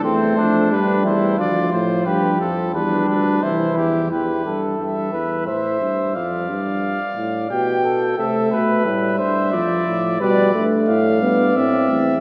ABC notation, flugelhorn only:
X:1
M:3/4
L:1/8
Q:1/4=89
K:Gdor
V:1 name="Flugelhorn"
C D2 E F2 | G z D2 E2 | G A2 =B c2 | d4 G A |
A =B2 c d2 | =B z d4 |]